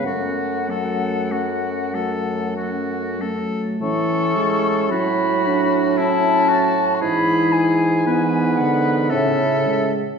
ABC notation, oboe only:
X:1
M:3/4
L:1/16
Q:1/4=55
K:F#m
V:1 name="Oboe"
F2 A2 F2 A2 F2 A2 | [K:A] A4 F4 E2 F2 | G4 B4 A3 z |]